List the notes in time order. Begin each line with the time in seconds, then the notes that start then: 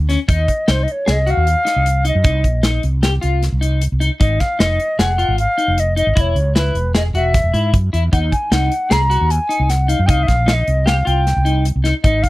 0.00 D2
0.09 C#4, snare, closed hi-hat
0.28 D#2 D#4 D#5, kick, closed hi-hat
0.48 kick, closed hi-hat
0.68 C2 D#4 C5, snare, closed hi-hat
0.83 D#5
0.88 C#5, closed hi-hat
1.06 C2 G#4, snare, closed hi-hat
1.11 D#5
1.26 F#4 F5, closed hi-hat
1.37 D#2
1.47 closed hi-hat
1.65 D#4, snare, closed hi-hat
1.76 C2
1.86 closed hi-hat
2.05 D#4 D#5, closed hi-hat
2.15 F#2
2.24 C2 D#4, kick, closed hi-hat
2.44 A#1, kick, closed hi-hat
2.63 D#4, snare, closed hi-hat
2.83 C2, closed hi-hat
3.03 G4, snare, closed hi-hat
3.21 C2 F4, closed hi-hat
3.43 snare, closed hi-hat
3.52 C2
3.61 D#4, closed hi-hat
3.81 closed hi-hat
3.92 C2
4.00 D#4, closed hi-hat
4.20 G#1 D#4 D#5, kick, closed hi-hat
4.40 F5, kick, snare, closed hi-hat
4.59 F1 D#4 D#5, snare, closed hi-hat
4.80 closed hi-hat
4.99 F1 G#4 F#5, snare, closed hi-hat
5.18 F4, closed hi-hat
5.28 G#1
5.38 F5, closed hi-hat
5.58 D#4, closed hi-hat
5.68 F1
5.78 D#5, closed hi-hat
5.96 D#4 D#5, closed hi-hat
6.07 G#1
6.15 E1 E4 D#5, kick, closed hi-hat
6.21 C#5
6.35 C#2, closed hi-hat
6.55 E4 B4, snare, closed hi-hat
6.74 E1, closed hi-hat
6.94 G#4 D#5, snare, closed hi-hat
7.14 E1 F#4 E5, closed hi-hat
7.34 kick, snare, closed hi-hat
7.44 E1
7.54 G#2 E4, closed hi-hat
7.74 F#2, kick, closed hi-hat
7.93 E2 E4, closed hi-hat
8.13 D#2 D#4 F#5, kick, closed hi-hat
8.32 G#5, kick, closed hi-hat
8.51 C2 D#4 F#5, snare, closed hi-hat
8.72 closed hi-hat
8.90 C2 G#4 A#5, snare, closed hi-hat
9.10 F#4, closed hi-hat
9.21 D#2
9.30 G#5, closed hi-hat
9.49 D#4, closed hi-hat
9.60 C2
9.70 F#5, snare, closed hi-hat
9.88 D#4 F5, closed hi-hat
9.99 F#2
10.06 C2 D#4 F5 G5, kick, closed hi-hat
10.23 E5 F5
10.28 A#1, kick, snare, closed hi-hat
10.46 D#4 F5, snare, closed hi-hat
10.54 D#5
10.68 C2, closed hi-hat
10.86 G4 F5, snare, closed hi-hat
11.05 C2 F4 G5, closed hi-hat
11.27 snare, closed hi-hat
11.37 C2
11.45 D#4, closed hi-hat
11.65 closed hi-hat
11.76 C2
11.84 D#4, snare, closed hi-hat
12.03 G#1 D#4 D#5, kick, closed hi-hat
12.23 F5, kick, closed hi-hat